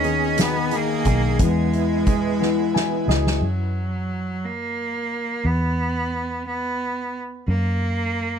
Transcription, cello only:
Already playing: C#4
0.41 B3
0.76 A#3
1.42 G#3
3.43 F#3
4.45 A#3
5.46 B3
6.47 B3
7.48 A#3

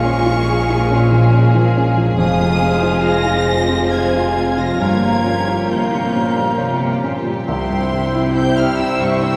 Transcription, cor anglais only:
Already playing: F5
2.19 F5
3.92 F5
4.80 F5
5.69 F5
7.46 E5
8.36 E5
9.23 E5

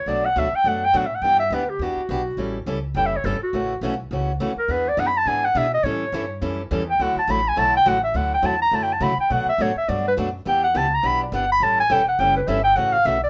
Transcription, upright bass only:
0.06 B1
0.36 D2
0.53 muted upright bass stroke
0.64 F#2
0.94 A2
1.22 G2
1.50 D2
1.79 E2
1.96 muted upright bass stroke
2.09 B1
2.37 A1
2.66 C#2
2.95 F#1
3.24 G1
3.41 muted upright bass stroke
3.53 A1
3.81 B1
4.11 C#2
4.40 D#2
4.56 muted upright bass stroke
4.68 E2
4.97 F#2
5.26 G#2
5.55 B2
5.83 A2
6.12 G2
6.42 F#2
6.71 E2
6.99 D2
7.16 muted upright bass stroke
7.27 A1
7.57 B1
7.86 A1
8.14 D2
8.43 E2
8.71 F#2
9.01 C#3
9.18 muted upright bass stroke
9.30 B2
9.46 muted upright bass stroke
9.58 A2
9.76 muted upright bass stroke
9.89 G2
10.18 F#2
10.46 E2
10.75 C#2
11.03 B1
11.32 G1
11.60 A1
11.90 E1
12.19 F#1
12.48 G1
12.77 A1
13.05 B1

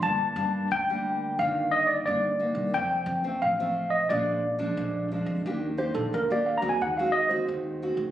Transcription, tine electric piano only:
0.03 A5
0.72 G5
1.39 F5
1.71 D#5
1.87 D5
2.06 D5
2.74 G5
3.42 F5
3.90 D#5
4.09 D5
5.78 C5
5.95 A4
6.14 A#4
6.32 D5
6.46 F5
6.58 A#5
6.69 G#5
6.82 F#5
6.97 F5
7.12 D#5
7.29 C5

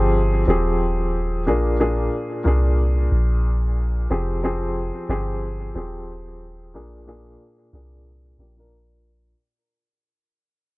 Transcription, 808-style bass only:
Already playing: G1
0.47 D#1
1.47 A#1
2.46 C2
3.12 A#1
4.11 F1
5.09 G1
5.75 D#1
6.74 A#1
7.73 C2
8.39 A#1

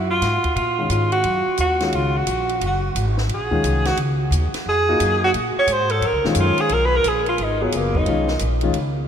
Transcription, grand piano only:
0.79 D#3 G#3 C#4 F4
1.80 D#3 G#3 C#4 F4
3.51 D#3 G#3 C#4 F4
4.89 A#3 D#4 F4 F#4
6.25 D#3 G#3 C#4 F4
7.62 F#3 B3 F4 G#4
8.07 D#3 G#3 C#4 F4
8.63 D#3 G#3 C#4 F4

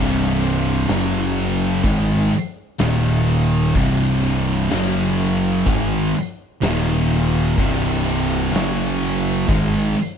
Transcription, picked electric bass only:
Already playing: C1
0.89 F#1
1.84 G#1
2.80 D#1
3.76 C1
4.72 F#1
5.67 G#1
6.62 D#1
7.58 C1
8.52 F#1
9.49 G#1

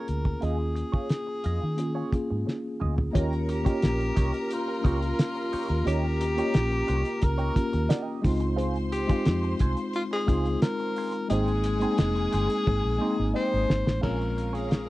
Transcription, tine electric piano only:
Already playing: A#3 C#4 F4 G#4
0.40 A#3 C#4 F4 G#4
1.77 A#3 C#4 F4 G#4
2.11 A#3 C#4 F4 G#4
3.12 A#3 C#4 F4 G4
3.63 A#3 C#4 F4 G4
4.81 A#3 C#4 F4 G4
5.84 A#3 C#4 F4 G4
6.36 A#3 C#4 F4 G4
7.55 A#3 C#4 F4 G4
8.22 G#3 C4 D#4 F4
9.08 G#3 C4 D#4 F4
10.27 G#3 C4 D#4 F4
11.28 G#3 A#3 C4 D#4
11.80 G#3 A#3 C4 D#4
12.98 G#3 A#3 C4 D#4
14.01 G#3 C4 C#4 F4

